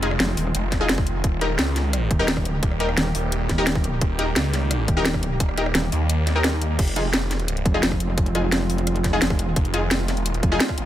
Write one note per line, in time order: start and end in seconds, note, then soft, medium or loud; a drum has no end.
0.00 0.18 F1 loud
0.00 6.75 D#3 medium
0.00 1.20 G#3 medium
0.00 1.20 C4 medium
0.00 0.10 D#4 medium
0.00 1.20 F4 medium
0.00 0.10 F4 medium
0.00 0.10 G#4 medium
0.00 closed hi-hat medium
0.11 cross-stick medium
0.20 0.36 F1 loud
0.20 snare loud
0.20 closed hi-hat medium
0.37 0.53 D#1 loud
0.37 open hi-hat medium
0.55 0.88 F1 loud
0.55 closed hi-hat loud
0.72 kick medium
0.72 snare soft
0.72 closed hi-hat medium
0.81 0.88 D#4 medium
0.81 0.88 F4 medium
0.81 0.88 G#4 loud
0.89 1.23 F1 medium
0.89 snare loud
0.89 closed hi-hat medium
0.98 kick loud
1.07 closed hi-hat medium
1.24 1.57 D#1 loud
1.24 6.75 G3 medium
1.24 6.75 A#3 medium
1.24 6.75 G4 medium
1.24 kick loud
1.24 closed hi-hat medium
1.41 1.49 D#4 medium
1.41 1.49 G4 medium
1.41 1.49 A#4 medium
1.41 closed hi-hat medium
1.59 2.09 C#2 loud
1.59 snare loud
1.59 closed hi-hat medium
1.76 snare soft
1.76 closed hi-hat medium
1.93 cross-stick medium
1.93 closed hi-hat loud
2.11 2.61 D#1 loud
2.11 kick loud
2.11 closed hi-hat medium
2.19 2.27 D#4 medium
2.19 2.27 G4 medium
2.19 2.27 A#4 loud
2.28 snare loud
2.28 closed hi-hat medium
2.37 kick medium
2.37 cross-stick medium
2.45 closed hi-hat medium
2.63 2.96 D#1 loud
2.63 kick loud
2.63 closed hi-hat loud
2.71 cross-stick soft
2.80 2.88 D#4 medium
2.80 2.88 G4 medium
2.80 2.88 A#4 medium
2.80 closed hi-hat medium
2.89 cross-stick medium
2.97 3.13 D#1 loud
2.97 snare loud
2.97 closed hi-hat medium
3.15 3.48 D#1 medium
3.15 open hi-hat medium
3.32 closed hi-hat loud
3.49 4.00 D#1 medium
3.49 kick medium
3.49 snare soft
3.49 closed hi-hat medium
3.58 3.66 D#4 loud
3.58 3.66 G4 medium
3.58 3.66 A#4 loud
3.67 snare loud
3.67 closed hi-hat loud
3.75 kick loud
3.84 closed hi-hat medium
4.01 4.35 D#1 medium
4.01 kick loud
4.01 closed hi-hat loud
4.19 4.26 D#4 medium
4.19 4.26 G4 medium
4.19 4.26 A#4 medium
4.19 closed hi-hat medium
4.36 4.87 C#2 loud
4.36 snare loud
4.36 closed hi-hat loud
4.53 snare soft
4.53 closed hi-hat medium
4.71 cross-stick medium
4.71 closed hi-hat loud
4.88 5.39 D#1 medium
4.88 kick loud
4.88 closed hi-hat medium
4.97 5.04 D#4 loud
4.97 5.04 G4 medium
4.97 5.04 A#4 loud
5.05 snare loud
5.05 closed hi-hat loud
5.14 kick medium
5.14 cross-stick medium
5.23 closed hi-hat medium
5.40 5.73 D#1 loud
5.40 kick loud
5.40 closed hi-hat loud
5.49 cross-stick soft
5.57 5.65 D#4 medium
5.57 5.65 G4 medium
5.57 5.65 A#4 medium
5.57 closed hi-hat medium
5.66 cross-stick medium
5.75 5.91 D#1 loud
5.75 snare loud
5.75 closed hi-hat loud
5.92 6.77 D#2 loud
5.92 open hi-hat medium
6.10 closed hi-hat loud
6.27 snare soft
6.27 closed hi-hat medium
6.35 6.43 D#4 medium
6.35 6.43 G4 medium
6.35 6.43 A#4 loud
6.44 snare loud
6.44 closed hi-hat loud
6.62 closed hi-hat medium
6.79 7.64 F1 loud
6.79 10.85 D#3 medium
6.79 10.85 G#3 medium
6.79 9.54 C4 medium
6.79 10.85 F4 medium
6.79 kick loud
6.79 closed hi-hat loud
6.79 crash loud
6.88 closed hi-hat soft
6.96 7.04 D#4 medium
6.96 7.04 F4 medium
6.96 7.04 G#4 medium
6.96 closed hi-hat medium
7.14 snare loud
7.14 closed hi-hat medium
7.31 snare soft
7.31 closed hi-hat medium
7.40 closed hi-hat soft
7.48 closed hi-hat loud
7.57 closed hi-hat soft
7.66 7.81 F1 medium
7.66 kick loud
7.66 closed hi-hat medium
7.74 7.82 D#4 medium
7.74 7.82 F4 medium
7.74 7.82 G#4 loud
7.74 cross-stick soft
7.83 9.20 F1 loud
7.83 snare loud
7.83 closed hi-hat loud
7.92 kick medium
7.92 cross-stick soft
8.00 closed hi-hat medium
8.18 kick loud
8.18 closed hi-hat medium
8.26 closed hi-hat soft
8.35 8.43 D#4 medium
8.35 8.43 F4 medium
8.35 8.43 G#4 medium
8.35 cross-stick soft
8.35 closed hi-hat medium
8.52 snare loud
8.52 closed hi-hat medium
8.70 open hi-hat medium
8.78 closed hi-hat soft
8.87 cross-stick soft
8.87 closed hi-hat loud
8.96 closed hi-hat soft
9.04 kick medium
9.04 snare soft
9.04 closed hi-hat medium
9.13 9.21 D#4 medium
9.13 9.21 F4 medium
9.13 9.21 G#4 loud
9.22 9.55 F1 loud
9.22 snare loud
9.22 closed hi-hat medium
9.30 kick loud
9.30 cross-stick soft
9.39 closed hi-hat medium
9.56 10.16 F1 loud
9.56 10.85 A#3 medium
9.56 kick loud
9.56 closed hi-hat loud
9.65 closed hi-hat soft
9.74 9.81 D#4 medium
9.74 9.81 F4 medium
9.74 9.81 G#4 medium
9.74 closed hi-hat medium
9.91 snare loud
9.91 closed hi-hat medium
10.08 snare soft
10.08 closed hi-hat medium
10.16 10.42 E1 loud
10.16 closed hi-hat soft
10.26 closed hi-hat loud
10.34 closed hi-hat soft
10.43 10.59 F1 medium
10.43 kick loud
10.43 closed hi-hat medium
10.52 10.59 D#4 medium
10.52 10.59 F4 medium
10.52 10.59 G#4 loud
10.52 cross-stick soft
10.60 snare loud
10.60 closed hi-hat medium
10.69 kick medium
10.69 cross-stick soft
10.78 10.85 G#1 loud
10.78 closed hi-hat medium